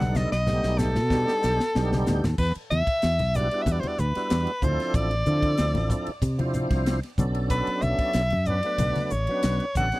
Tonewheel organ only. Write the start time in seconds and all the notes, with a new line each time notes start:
Already playing: G3 B3 D4 D#4 A4
0.47 G3 A3 B3 D#4 G4
1.10 G3 B3 D4 D#4 G4
1.75 G3 B3 D4 D#4 G4
3.35 G3 B3 D4 E4 F#4
3.52 G3 B3 D4 E4 F#4
4.16 G3 B3 D4 E4 F#4
4.62 F3 C4 D4 E4 A4
5.25 F3 C4 D4 E4 A4
6.38 F3 C4 D4 E4 C5
7.18 F#3 B3 C#4 D4 A4
8.47 F#3 B3 C#4 D4 B4
8.64 F#3 A3 B3 D4 B4
9.29 F#3 B3 C#4 D4 B4
9.76 F#3 B3 C#4 D4 A4
9.93 F#3 B3 C#4 D4 G#4